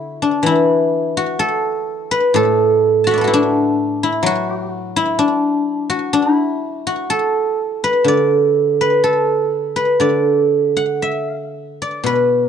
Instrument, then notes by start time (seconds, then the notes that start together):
guzheng
Already playing: D3 D4 E4 F#4
0.22 D4
0.43 E3 E4
1.17 F#4
1.39 A4
2.11 B4
2.34 A2 A4
3.04 F#4 F#5 A5
3.11 D5 E5
3.18 A4 B4
3.24 E4 F#4
3.34 D4
4.03 E4
4.23 F#3 F#4
4.96 E4
5.19 D4
5.90 F#4
6.13 D4
6.34 E4
6.87 F#4
7.10 A4
7.84 B4
8.04 D3 D5
8.81 B4
9.04 A4
9.76 B4
10.00 D3 D5
10.77 F#5
11.02 E5
11.82 D5
12.04 B2 B4